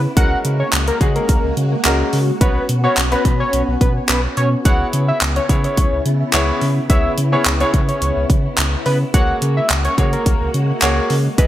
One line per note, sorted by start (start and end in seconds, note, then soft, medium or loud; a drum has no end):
0.00 0.13 C#3 medium
0.00 0.13 B3 medium
0.00 0.13 E4 medium
0.17 0.35 C#2 loud
0.17 0.62 G#3 medium
0.17 2.39 G#3 medium
0.17 2.39 A#3 medium
0.17 0.63 C#4 medium
0.17 4.61 F#4 medium
0.17 0.63 F#4 medium
0.17 0.63 A#4 medium
0.17 0.39 F#5 loud
0.17 kick loud
0.17 closed hi-hat loud
0.45 0.63 C#3 medium
0.45 closed hi-hat medium
0.60 0.70 C#5 medium
0.73 0.91 C#2 loud
0.73 clap loud
0.73 closed hi-hat loud
0.88 0.98 A#4 medium
0.88 closed hi-hat medium
1.01 1.19 C#3 loud
1.01 1.47 G#3 medium
1.01 1.47 C#4 medium
1.01 1.47 F#4 medium
1.01 1.47 G#4 medium
1.01 kick medium
1.01 closed hi-hat medium
1.16 1.54 A#4 medium
1.16 closed hi-hat medium
1.29 1.39 C#2 loud
1.29 kick loud
1.29 closed hi-hat medium
1.44 1.52 C#2 loud
1.57 1.75 C#3 medium
1.57 closed hi-hat medium
1.85 2.03 C#2 loud
1.85 2.15 G#3 medium
1.85 2.15 C#4 medium
1.85 2.15 F#4 medium
1.85 2.15 A#4 loud
1.85 clap loud
1.85 closed hi-hat loud
2.13 2.31 C#3 loud
2.13 open hi-hat medium
2.41 2.59 B1 loud
2.41 2.64 B3 medium
2.41 4.63 B3 medium
2.41 4.63 C#4 medium
2.41 2.64 C#4 medium
2.41 2.64 F#4 medium
2.41 2.63 B4 loud
2.41 2.64 C#5 medium
2.41 kick loud
2.41 closed hi-hat loud
2.69 2.87 B2 loud
2.69 closed hi-hat medium
2.84 2.98 B3 medium
2.84 2.98 C#4 medium
2.84 2.98 F#4 medium
2.84 2.94 C#5 medium
2.84 2.98 C#5 medium
2.97 3.15 B1 loud
2.97 clap loud
2.97 closed hi-hat loud
3.12 3.72 B3 medium
3.12 3.72 C#4 medium
3.12 3.72 F#4 medium
3.12 3.22 B4 medium
3.12 3.72 B4 medium
3.12 closed hi-hat medium
3.25 3.43 B2 loud
3.25 kick medium
3.25 closed hi-hat medium
3.40 3.62 C#5 medium
3.53 3.63 B1 loud
3.53 closed hi-hat medium
3.68 3.77 B1 loud
3.81 3.99 B2 loud
3.81 3.93 B4 medium
3.81 kick loud
3.81 closed hi-hat medium
4.09 4.28 B1 loud
4.09 4.21 B4 medium
4.09 clap loud
4.09 closed hi-hat medium
4.37 4.56 B2 loud
4.37 4.49 C#5 medium
4.37 closed hi-hat medium
4.65 4.84 C#2 loud
4.65 9.10 C#3 medium
4.65 5.11 B3 medium
4.65 9.10 B3 medium
4.65 5.11 E4 medium
4.65 9.10 E4 medium
4.65 5.11 G#4 medium
4.65 5.11 C#5 medium
4.65 4.87 F#5 loud
4.65 kick loud
4.65 closed hi-hat loud
4.93 5.12 C#3 loud
4.93 closed hi-hat medium
5.08 5.19 E5 medium
5.21 5.40 C#2 loud
5.21 clap loud
5.21 closed hi-hat loud
5.36 5.47 C#5 medium
5.36 closed hi-hat medium
5.49 5.68 C#3 loud
5.49 5.95 B3 medium
5.49 5.95 E4 medium
5.49 5.95 G#4 medium
5.49 5.95 C#5 medium
5.49 kick medium
5.49 closed hi-hat medium
5.64 6.03 C#5 medium
5.64 closed hi-hat medium
5.77 5.87 C#2 loud
5.77 kick loud
5.77 closed hi-hat medium
5.92 6.01 C#2 loud
6.06 6.24 C#3 loud
6.06 closed hi-hat medium
6.33 6.52 C#2 loud
6.33 6.64 B3 medium
6.33 6.64 E4 medium
6.33 6.64 G#4 medium
6.33 6.64 C#5 loud
6.33 clap loud
6.33 closed hi-hat loud
6.61 6.80 C#3 loud
6.61 open hi-hat medium
6.89 7.08 C#2 loud
6.89 7.12 B3 medium
6.89 7.13 E4 medium
6.89 7.13 G#4 medium
6.89 7.13 C#5 medium
6.89 7.12 E5 medium
6.89 kick loud
6.89 closed hi-hat loud
7.18 7.36 C#3 loud
7.18 closed hi-hat medium
7.32 7.47 B3 medium
7.32 7.47 E4 medium
7.32 7.47 G#4 medium
7.32 7.43 C#5 medium
7.32 7.47 C#5 medium
7.46 7.64 C#2 loud
7.46 clap loud
7.46 closed hi-hat loud
7.60 8.20 B3 medium
7.60 8.21 E4 medium
7.60 8.21 G#4 medium
7.60 7.71 C#5 medium
7.60 8.21 C#5 medium
7.60 closed hi-hat medium
7.74 7.92 C#3 loud
7.74 kick medium
7.74 closed hi-hat medium
7.89 8.27 C#5 medium
7.89 closed hi-hat medium
8.02 8.11 C#2 loud
8.02 closed hi-hat medium
8.17 8.25 C#2 loud
8.30 8.48 C#3 medium
8.30 kick loud
8.30 closed hi-hat medium
8.58 8.76 C#2 loud
8.58 clap loud
8.58 closed hi-hat loud
8.86 9.04 C#3 loud
8.86 8.98 B4 medium
8.86 open hi-hat medium
9.14 9.32 C#2 loud
9.14 11.47 G#3 medium
9.14 9.60 A#3 medium
9.14 11.36 A#3 medium
9.14 11.36 F#4 medium
9.14 9.60 F#4 medium
9.14 9.60 G#4 medium
9.14 9.60 C#5 medium
9.14 9.36 F#5 loud
9.14 kick loud
9.14 closed hi-hat loud
9.42 9.60 C#3 loud
9.42 closed hi-hat loud
9.57 9.67 E5 medium
9.70 9.88 C#2 loud
9.70 clap loud
9.70 closed hi-hat loud
9.85 9.95 C#5 medium
9.85 closed hi-hat medium
9.98 10.16 C#3 loud
9.98 10.44 A#3 medium
9.98 10.44 F#4 medium
9.98 10.44 G#4 medium
9.98 10.44 C#5 medium
9.98 kick medium
9.98 closed hi-hat medium
10.13 10.52 A#4 medium
10.13 closed hi-hat medium
10.26 10.36 C#2 loud
10.26 kick loud
10.26 closed hi-hat medium
10.41 10.50 C#2 loud
10.54 10.72 C#3 loud
10.54 closed hi-hat medium
10.82 11.00 C#2 loud
10.82 11.12 A#3 medium
10.82 11.12 F#4 medium
10.82 11.12 G#4 medium
10.82 11.13 C#5 loud
10.82 clap loud
10.82 closed hi-hat loud
11.10 11.28 C#3 loud
11.10 open hi-hat medium
11.38 11.47 C#2 loud
11.38 11.47 E3 medium
11.38 11.47 B3 medium
11.38 11.47 E4 medium
11.38 11.47 G#4 medium
11.38 11.47 B4 loud
11.38 11.47 D#5 medium
11.38 kick loud
11.38 closed hi-hat loud